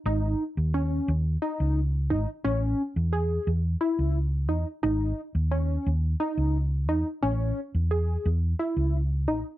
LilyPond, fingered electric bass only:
\new Staff \with { instrumentName = "Fingered electric bass" } { \clef bass \time 7/8 \key a \lydian \tempo 4 = 88 gis,,8 r16 dis,8. dis,8 r16 cis,8. gis,,16 r16 | a,,8 r16 e,8. e,8 r16 cis,8. e,16 r16 | gis,,8 r16 dis,8. dis,8 r16 cis,8. e,16 r16 | a,,8 r16 e,8. e,8 r16 cis,8. a,,16 r16 | }